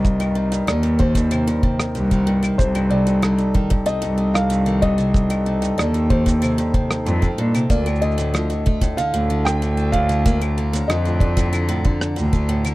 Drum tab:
SH |x-x---x-x-x---x-x-x---x-x-x---x-|x-x---x-x-x-----x-x---x-x-x---x-|x-x---x-x-x---x-x-x---x-x-x---x-|x-xxxxx-x-x---x-x-x---x-x-x---x-|
CL |--x-------------x-------------x-|--x-----------------------------|--x-------------x-------------x-|--x-----------------------------|
SD |--------r-------------r---------|--------r-------------r---------|--------r-------------r---------|--------r-------------r---------|
BD |o-----------o-o-----o-----o-----|o-----------o-o-------------o---|o-----------o-o-----o-----o-----|o-----------o-o-------------o---|

SH |x-x---x-x-x---x-x-x---x-x-x---x-|
CL |--x-------------x-------------x-|
SD |--------r-------------r---------|
BD |o-----------o-o-----o-----o-----|